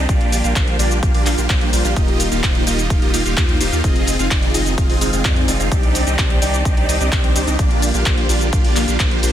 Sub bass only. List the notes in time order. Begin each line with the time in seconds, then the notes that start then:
0.09 A#1
0.44 A#1
0.56 A#1
0.79 A#1
1.03 A#1
1.15 A#1
1.26 A#1
1.38 A#1
1.50 A#1
1.73 A#1
1.85 A#1
1.97 D#1
2.32 D#1
2.43 D#1
2.67 D#1
2.90 D#1
3.02 D#1
3.14 D#1
3.25 D#1
3.37 D#2
3.61 D#1
3.72 D#2
3.84 F1
4.19 F1
4.31 F1
4.54 F1
4.78 F1
4.90 F1
5.01 F1
5.13 F1
5.25 F2
5.48 F1
5.60 F1
5.72 C2
6.07 C2
6.18 C2
6.42 C2
6.65 C2
6.77 C2
6.89 C2
7.01 C2
7.12 C2
7.36 C2
7.47 C2
7.59 A#1
7.94 A#1
8.06 A#1
8.29 A#1
8.53 A#1
8.64 A#1
8.76 A#1
8.88 A#1
9.00 A#1
9.23 A#1